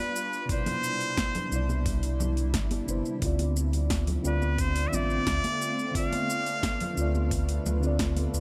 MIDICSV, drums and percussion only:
0, 0, Header, 1, 2, 480
1, 0, Start_track
1, 0, Tempo, 681818
1, 348, Time_signature, 4, 2, 24, 8
1, 5915, End_track
2, 0, Start_track
2, 0, Title_t, "Drums"
2, 112, Note_on_c, 9, 82, 86
2, 183, Note_off_c, 9, 82, 0
2, 232, Note_on_c, 9, 82, 36
2, 303, Note_off_c, 9, 82, 0
2, 347, Note_on_c, 9, 36, 116
2, 347, Note_on_c, 9, 46, 60
2, 351, Note_on_c, 9, 82, 46
2, 417, Note_off_c, 9, 36, 0
2, 417, Note_off_c, 9, 46, 0
2, 421, Note_off_c, 9, 82, 0
2, 466, Note_on_c, 9, 63, 105
2, 467, Note_on_c, 9, 46, 43
2, 470, Note_on_c, 9, 64, 80
2, 471, Note_on_c, 9, 82, 23
2, 537, Note_off_c, 9, 46, 0
2, 537, Note_off_c, 9, 63, 0
2, 540, Note_off_c, 9, 64, 0
2, 541, Note_off_c, 9, 82, 0
2, 589, Note_on_c, 9, 82, 81
2, 659, Note_off_c, 9, 82, 0
2, 707, Note_on_c, 9, 46, 31
2, 711, Note_on_c, 9, 82, 36
2, 778, Note_off_c, 9, 46, 0
2, 782, Note_off_c, 9, 82, 0
2, 827, Note_on_c, 9, 36, 106
2, 827, Note_on_c, 9, 38, 98
2, 827, Note_on_c, 9, 46, 63
2, 831, Note_on_c, 9, 63, 62
2, 831, Note_on_c, 9, 82, 45
2, 897, Note_off_c, 9, 38, 0
2, 897, Note_off_c, 9, 46, 0
2, 898, Note_off_c, 9, 36, 0
2, 901, Note_off_c, 9, 82, 0
2, 902, Note_off_c, 9, 63, 0
2, 949, Note_on_c, 9, 46, 41
2, 952, Note_on_c, 9, 64, 72
2, 953, Note_on_c, 9, 82, 23
2, 1019, Note_off_c, 9, 46, 0
2, 1023, Note_off_c, 9, 64, 0
2, 1023, Note_off_c, 9, 82, 0
2, 1071, Note_on_c, 9, 82, 78
2, 1141, Note_off_c, 9, 82, 0
2, 1192, Note_on_c, 9, 63, 99
2, 1193, Note_on_c, 9, 82, 35
2, 1262, Note_off_c, 9, 63, 0
2, 1264, Note_off_c, 9, 82, 0
2, 1307, Note_on_c, 9, 36, 115
2, 1308, Note_on_c, 9, 46, 66
2, 1311, Note_on_c, 9, 82, 47
2, 1378, Note_off_c, 9, 36, 0
2, 1378, Note_off_c, 9, 46, 0
2, 1382, Note_off_c, 9, 82, 0
2, 1429, Note_on_c, 9, 46, 42
2, 1433, Note_on_c, 9, 82, 23
2, 1499, Note_off_c, 9, 46, 0
2, 1503, Note_off_c, 9, 82, 0
2, 1549, Note_on_c, 9, 64, 76
2, 1552, Note_on_c, 9, 82, 77
2, 1556, Note_on_c, 9, 63, 69
2, 1619, Note_off_c, 9, 64, 0
2, 1622, Note_off_c, 9, 82, 0
2, 1626, Note_off_c, 9, 63, 0
2, 1669, Note_on_c, 9, 46, 28
2, 1673, Note_on_c, 9, 82, 33
2, 1740, Note_off_c, 9, 46, 0
2, 1743, Note_off_c, 9, 82, 0
2, 1787, Note_on_c, 9, 38, 98
2, 1787, Note_on_c, 9, 46, 65
2, 1788, Note_on_c, 9, 36, 107
2, 1791, Note_on_c, 9, 82, 46
2, 1857, Note_off_c, 9, 38, 0
2, 1857, Note_off_c, 9, 46, 0
2, 1858, Note_off_c, 9, 36, 0
2, 1861, Note_off_c, 9, 82, 0
2, 1906, Note_on_c, 9, 46, 40
2, 1908, Note_on_c, 9, 63, 92
2, 1910, Note_on_c, 9, 82, 22
2, 1977, Note_off_c, 9, 46, 0
2, 1978, Note_off_c, 9, 63, 0
2, 1980, Note_off_c, 9, 82, 0
2, 2030, Note_on_c, 9, 82, 86
2, 2101, Note_off_c, 9, 82, 0
2, 2150, Note_on_c, 9, 82, 34
2, 2220, Note_off_c, 9, 82, 0
2, 2266, Note_on_c, 9, 46, 59
2, 2268, Note_on_c, 9, 36, 105
2, 2270, Note_on_c, 9, 82, 41
2, 2337, Note_off_c, 9, 46, 0
2, 2339, Note_off_c, 9, 36, 0
2, 2340, Note_off_c, 9, 82, 0
2, 2387, Note_on_c, 9, 46, 44
2, 2389, Note_on_c, 9, 63, 86
2, 2391, Note_on_c, 9, 82, 22
2, 2457, Note_off_c, 9, 46, 0
2, 2459, Note_off_c, 9, 63, 0
2, 2461, Note_off_c, 9, 82, 0
2, 2510, Note_on_c, 9, 82, 76
2, 2580, Note_off_c, 9, 82, 0
2, 2628, Note_on_c, 9, 46, 28
2, 2632, Note_on_c, 9, 82, 33
2, 2698, Note_off_c, 9, 46, 0
2, 2702, Note_off_c, 9, 82, 0
2, 2746, Note_on_c, 9, 38, 92
2, 2746, Note_on_c, 9, 46, 65
2, 2748, Note_on_c, 9, 36, 112
2, 2750, Note_on_c, 9, 82, 45
2, 2754, Note_on_c, 9, 63, 64
2, 2817, Note_off_c, 9, 38, 0
2, 2817, Note_off_c, 9, 46, 0
2, 2819, Note_off_c, 9, 36, 0
2, 2821, Note_off_c, 9, 82, 0
2, 2825, Note_off_c, 9, 63, 0
2, 2868, Note_on_c, 9, 46, 40
2, 2871, Note_on_c, 9, 64, 63
2, 2871, Note_on_c, 9, 82, 21
2, 2938, Note_off_c, 9, 46, 0
2, 2941, Note_off_c, 9, 64, 0
2, 2942, Note_off_c, 9, 82, 0
2, 2990, Note_on_c, 9, 82, 75
2, 3060, Note_off_c, 9, 82, 0
2, 3112, Note_on_c, 9, 63, 91
2, 3112, Note_on_c, 9, 82, 34
2, 3182, Note_off_c, 9, 63, 0
2, 3182, Note_off_c, 9, 82, 0
2, 3227, Note_on_c, 9, 46, 64
2, 3228, Note_on_c, 9, 36, 102
2, 3231, Note_on_c, 9, 82, 48
2, 3298, Note_off_c, 9, 46, 0
2, 3299, Note_off_c, 9, 36, 0
2, 3302, Note_off_c, 9, 82, 0
2, 3348, Note_on_c, 9, 46, 46
2, 3352, Note_on_c, 9, 82, 24
2, 3419, Note_off_c, 9, 46, 0
2, 3423, Note_off_c, 9, 82, 0
2, 3472, Note_on_c, 9, 82, 76
2, 3474, Note_on_c, 9, 64, 72
2, 3476, Note_on_c, 9, 63, 70
2, 3542, Note_off_c, 9, 82, 0
2, 3544, Note_off_c, 9, 64, 0
2, 3546, Note_off_c, 9, 63, 0
2, 3592, Note_on_c, 9, 82, 31
2, 3663, Note_off_c, 9, 82, 0
2, 3708, Note_on_c, 9, 36, 112
2, 3708, Note_on_c, 9, 38, 96
2, 3708, Note_on_c, 9, 46, 68
2, 3712, Note_on_c, 9, 82, 47
2, 3779, Note_off_c, 9, 36, 0
2, 3779, Note_off_c, 9, 38, 0
2, 3779, Note_off_c, 9, 46, 0
2, 3783, Note_off_c, 9, 82, 0
2, 3830, Note_on_c, 9, 46, 42
2, 3833, Note_on_c, 9, 63, 103
2, 3834, Note_on_c, 9, 82, 23
2, 3900, Note_off_c, 9, 46, 0
2, 3904, Note_off_c, 9, 63, 0
2, 3904, Note_off_c, 9, 82, 0
2, 3954, Note_on_c, 9, 82, 82
2, 4025, Note_off_c, 9, 82, 0
2, 4076, Note_on_c, 9, 82, 34
2, 4147, Note_off_c, 9, 82, 0
2, 4188, Note_on_c, 9, 36, 102
2, 4190, Note_on_c, 9, 46, 67
2, 4194, Note_on_c, 9, 82, 42
2, 4259, Note_off_c, 9, 36, 0
2, 4260, Note_off_c, 9, 46, 0
2, 4264, Note_off_c, 9, 82, 0
2, 4312, Note_on_c, 9, 46, 43
2, 4312, Note_on_c, 9, 63, 101
2, 4316, Note_on_c, 9, 82, 22
2, 4382, Note_off_c, 9, 63, 0
2, 4383, Note_off_c, 9, 46, 0
2, 4386, Note_off_c, 9, 82, 0
2, 4434, Note_on_c, 9, 82, 75
2, 4505, Note_off_c, 9, 82, 0
2, 4550, Note_on_c, 9, 46, 32
2, 4554, Note_on_c, 9, 82, 33
2, 4621, Note_off_c, 9, 46, 0
2, 4625, Note_off_c, 9, 82, 0
2, 4668, Note_on_c, 9, 36, 100
2, 4669, Note_on_c, 9, 38, 99
2, 4669, Note_on_c, 9, 46, 65
2, 4673, Note_on_c, 9, 63, 57
2, 4673, Note_on_c, 9, 82, 43
2, 4738, Note_off_c, 9, 36, 0
2, 4740, Note_off_c, 9, 38, 0
2, 4740, Note_off_c, 9, 46, 0
2, 4743, Note_off_c, 9, 63, 0
2, 4744, Note_off_c, 9, 82, 0
2, 4790, Note_on_c, 9, 46, 43
2, 4794, Note_on_c, 9, 82, 21
2, 4796, Note_on_c, 9, 64, 74
2, 4861, Note_off_c, 9, 46, 0
2, 4864, Note_off_c, 9, 82, 0
2, 4867, Note_off_c, 9, 64, 0
2, 4910, Note_on_c, 9, 82, 78
2, 4980, Note_off_c, 9, 82, 0
2, 5033, Note_on_c, 9, 82, 33
2, 5035, Note_on_c, 9, 63, 92
2, 5103, Note_off_c, 9, 82, 0
2, 5106, Note_off_c, 9, 63, 0
2, 5148, Note_on_c, 9, 36, 103
2, 5148, Note_on_c, 9, 46, 69
2, 5152, Note_on_c, 9, 82, 44
2, 5219, Note_off_c, 9, 36, 0
2, 5219, Note_off_c, 9, 46, 0
2, 5223, Note_off_c, 9, 82, 0
2, 5270, Note_on_c, 9, 46, 46
2, 5274, Note_on_c, 9, 82, 22
2, 5341, Note_off_c, 9, 46, 0
2, 5345, Note_off_c, 9, 82, 0
2, 5392, Note_on_c, 9, 82, 72
2, 5394, Note_on_c, 9, 64, 77
2, 5395, Note_on_c, 9, 63, 65
2, 5462, Note_off_c, 9, 82, 0
2, 5464, Note_off_c, 9, 64, 0
2, 5466, Note_off_c, 9, 63, 0
2, 5512, Note_on_c, 9, 82, 33
2, 5583, Note_off_c, 9, 82, 0
2, 5627, Note_on_c, 9, 38, 100
2, 5627, Note_on_c, 9, 46, 63
2, 5628, Note_on_c, 9, 36, 102
2, 5631, Note_on_c, 9, 82, 45
2, 5697, Note_off_c, 9, 38, 0
2, 5697, Note_off_c, 9, 46, 0
2, 5698, Note_off_c, 9, 36, 0
2, 5701, Note_off_c, 9, 82, 0
2, 5749, Note_on_c, 9, 46, 40
2, 5750, Note_on_c, 9, 63, 86
2, 5753, Note_on_c, 9, 82, 21
2, 5819, Note_off_c, 9, 46, 0
2, 5821, Note_off_c, 9, 63, 0
2, 5823, Note_off_c, 9, 82, 0
2, 5872, Note_on_c, 9, 82, 79
2, 5915, Note_off_c, 9, 82, 0
2, 5915, End_track
0, 0, End_of_file